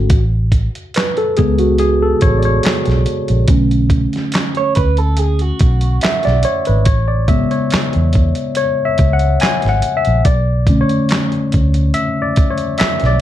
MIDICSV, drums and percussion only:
0, 0, Header, 1, 2, 480
1, 0, Start_track
1, 0, Key_signature, 3, "major"
1, 0, Tempo, 845070
1, 60, Time_signature, 4, 2, 24, 8
1, 7503, End_track
2, 0, Start_track
2, 0, Title_t, "Drums"
2, 55, Note_on_c, 9, 42, 89
2, 57, Note_on_c, 9, 36, 111
2, 112, Note_off_c, 9, 42, 0
2, 114, Note_off_c, 9, 36, 0
2, 294, Note_on_c, 9, 36, 78
2, 295, Note_on_c, 9, 42, 71
2, 351, Note_off_c, 9, 36, 0
2, 352, Note_off_c, 9, 42, 0
2, 427, Note_on_c, 9, 42, 42
2, 484, Note_off_c, 9, 42, 0
2, 536, Note_on_c, 9, 42, 75
2, 551, Note_on_c, 9, 39, 97
2, 554, Note_on_c, 9, 38, 116
2, 592, Note_off_c, 9, 42, 0
2, 608, Note_off_c, 9, 39, 0
2, 611, Note_off_c, 9, 38, 0
2, 663, Note_on_c, 9, 42, 34
2, 720, Note_off_c, 9, 42, 0
2, 776, Note_on_c, 9, 42, 60
2, 788, Note_on_c, 9, 36, 84
2, 833, Note_off_c, 9, 42, 0
2, 845, Note_off_c, 9, 36, 0
2, 900, Note_on_c, 9, 42, 42
2, 957, Note_off_c, 9, 42, 0
2, 1013, Note_on_c, 9, 42, 73
2, 1070, Note_off_c, 9, 42, 0
2, 1255, Note_on_c, 9, 42, 63
2, 1263, Note_on_c, 9, 36, 83
2, 1312, Note_off_c, 9, 42, 0
2, 1320, Note_off_c, 9, 36, 0
2, 1377, Note_on_c, 9, 42, 39
2, 1434, Note_off_c, 9, 42, 0
2, 1495, Note_on_c, 9, 42, 83
2, 1511, Note_on_c, 9, 39, 80
2, 1513, Note_on_c, 9, 38, 107
2, 1552, Note_off_c, 9, 42, 0
2, 1568, Note_off_c, 9, 39, 0
2, 1570, Note_off_c, 9, 38, 0
2, 1621, Note_on_c, 9, 42, 34
2, 1645, Note_on_c, 9, 38, 34
2, 1678, Note_off_c, 9, 42, 0
2, 1702, Note_off_c, 9, 38, 0
2, 1737, Note_on_c, 9, 42, 70
2, 1794, Note_off_c, 9, 42, 0
2, 1864, Note_on_c, 9, 42, 44
2, 1921, Note_off_c, 9, 42, 0
2, 1974, Note_on_c, 9, 42, 86
2, 1978, Note_on_c, 9, 36, 114
2, 2031, Note_off_c, 9, 42, 0
2, 2035, Note_off_c, 9, 36, 0
2, 2108, Note_on_c, 9, 42, 33
2, 2165, Note_off_c, 9, 42, 0
2, 2214, Note_on_c, 9, 36, 92
2, 2216, Note_on_c, 9, 42, 64
2, 2271, Note_off_c, 9, 36, 0
2, 2273, Note_off_c, 9, 42, 0
2, 2346, Note_on_c, 9, 42, 37
2, 2362, Note_on_c, 9, 38, 28
2, 2403, Note_off_c, 9, 42, 0
2, 2419, Note_off_c, 9, 38, 0
2, 2454, Note_on_c, 9, 42, 74
2, 2469, Note_on_c, 9, 39, 89
2, 2472, Note_on_c, 9, 38, 117
2, 2510, Note_off_c, 9, 42, 0
2, 2526, Note_off_c, 9, 39, 0
2, 2529, Note_off_c, 9, 38, 0
2, 2583, Note_on_c, 9, 42, 33
2, 2640, Note_off_c, 9, 42, 0
2, 2699, Note_on_c, 9, 42, 65
2, 2710, Note_on_c, 9, 36, 86
2, 2756, Note_off_c, 9, 42, 0
2, 2767, Note_off_c, 9, 36, 0
2, 2823, Note_on_c, 9, 42, 44
2, 2880, Note_off_c, 9, 42, 0
2, 2935, Note_on_c, 9, 42, 72
2, 2992, Note_off_c, 9, 42, 0
2, 3062, Note_on_c, 9, 42, 35
2, 3119, Note_off_c, 9, 42, 0
2, 3178, Note_on_c, 9, 42, 63
2, 3185, Note_on_c, 9, 36, 94
2, 3235, Note_off_c, 9, 42, 0
2, 3241, Note_off_c, 9, 36, 0
2, 3300, Note_on_c, 9, 42, 41
2, 3357, Note_off_c, 9, 42, 0
2, 3416, Note_on_c, 9, 42, 81
2, 3431, Note_on_c, 9, 39, 80
2, 3434, Note_on_c, 9, 38, 100
2, 3472, Note_off_c, 9, 42, 0
2, 3488, Note_off_c, 9, 39, 0
2, 3491, Note_off_c, 9, 38, 0
2, 3539, Note_on_c, 9, 42, 29
2, 3562, Note_on_c, 9, 38, 31
2, 3595, Note_off_c, 9, 42, 0
2, 3619, Note_off_c, 9, 38, 0
2, 3651, Note_on_c, 9, 42, 75
2, 3708, Note_off_c, 9, 42, 0
2, 3779, Note_on_c, 9, 42, 46
2, 3835, Note_off_c, 9, 42, 0
2, 3893, Note_on_c, 9, 42, 86
2, 3898, Note_on_c, 9, 36, 120
2, 3950, Note_off_c, 9, 42, 0
2, 3955, Note_off_c, 9, 36, 0
2, 4135, Note_on_c, 9, 36, 89
2, 4135, Note_on_c, 9, 42, 62
2, 4192, Note_off_c, 9, 36, 0
2, 4192, Note_off_c, 9, 42, 0
2, 4265, Note_on_c, 9, 42, 36
2, 4322, Note_off_c, 9, 42, 0
2, 4376, Note_on_c, 9, 42, 79
2, 4392, Note_on_c, 9, 39, 87
2, 4395, Note_on_c, 9, 38, 118
2, 4433, Note_off_c, 9, 42, 0
2, 4449, Note_off_c, 9, 39, 0
2, 4451, Note_off_c, 9, 38, 0
2, 4504, Note_on_c, 9, 42, 36
2, 4561, Note_off_c, 9, 42, 0
2, 4616, Note_on_c, 9, 42, 72
2, 4631, Note_on_c, 9, 36, 83
2, 4673, Note_off_c, 9, 42, 0
2, 4688, Note_off_c, 9, 36, 0
2, 4743, Note_on_c, 9, 42, 45
2, 4800, Note_off_c, 9, 42, 0
2, 4856, Note_on_c, 9, 42, 76
2, 4913, Note_off_c, 9, 42, 0
2, 5099, Note_on_c, 9, 42, 65
2, 5106, Note_on_c, 9, 36, 90
2, 5156, Note_off_c, 9, 42, 0
2, 5163, Note_off_c, 9, 36, 0
2, 5222, Note_on_c, 9, 42, 43
2, 5279, Note_off_c, 9, 42, 0
2, 5339, Note_on_c, 9, 42, 69
2, 5354, Note_on_c, 9, 39, 81
2, 5357, Note_on_c, 9, 38, 98
2, 5396, Note_off_c, 9, 42, 0
2, 5411, Note_off_c, 9, 39, 0
2, 5414, Note_off_c, 9, 38, 0
2, 5465, Note_on_c, 9, 42, 32
2, 5489, Note_on_c, 9, 38, 32
2, 5522, Note_off_c, 9, 42, 0
2, 5546, Note_off_c, 9, 38, 0
2, 5579, Note_on_c, 9, 42, 76
2, 5636, Note_off_c, 9, 42, 0
2, 5707, Note_on_c, 9, 42, 40
2, 5763, Note_off_c, 9, 42, 0
2, 5821, Note_on_c, 9, 42, 82
2, 5823, Note_on_c, 9, 36, 113
2, 5878, Note_off_c, 9, 42, 0
2, 5880, Note_off_c, 9, 36, 0
2, 6059, Note_on_c, 9, 36, 91
2, 6060, Note_on_c, 9, 42, 69
2, 6116, Note_off_c, 9, 36, 0
2, 6116, Note_off_c, 9, 42, 0
2, 6188, Note_on_c, 9, 42, 40
2, 6244, Note_off_c, 9, 42, 0
2, 6298, Note_on_c, 9, 42, 77
2, 6314, Note_on_c, 9, 39, 96
2, 6317, Note_on_c, 9, 38, 116
2, 6355, Note_off_c, 9, 42, 0
2, 6371, Note_off_c, 9, 39, 0
2, 6374, Note_off_c, 9, 38, 0
2, 6429, Note_on_c, 9, 42, 33
2, 6486, Note_off_c, 9, 42, 0
2, 6544, Note_on_c, 9, 42, 64
2, 6555, Note_on_c, 9, 36, 80
2, 6601, Note_off_c, 9, 42, 0
2, 6612, Note_off_c, 9, 36, 0
2, 6669, Note_on_c, 9, 42, 44
2, 6725, Note_off_c, 9, 42, 0
2, 6781, Note_on_c, 9, 42, 76
2, 6838, Note_off_c, 9, 42, 0
2, 7021, Note_on_c, 9, 42, 71
2, 7028, Note_on_c, 9, 36, 97
2, 7078, Note_off_c, 9, 42, 0
2, 7085, Note_off_c, 9, 36, 0
2, 7143, Note_on_c, 9, 42, 43
2, 7200, Note_off_c, 9, 42, 0
2, 7258, Note_on_c, 9, 42, 70
2, 7273, Note_on_c, 9, 39, 90
2, 7276, Note_on_c, 9, 38, 104
2, 7314, Note_off_c, 9, 42, 0
2, 7330, Note_off_c, 9, 39, 0
2, 7333, Note_off_c, 9, 38, 0
2, 7382, Note_on_c, 9, 42, 33
2, 7406, Note_on_c, 9, 38, 33
2, 7439, Note_off_c, 9, 42, 0
2, 7463, Note_off_c, 9, 38, 0
2, 7503, End_track
0, 0, End_of_file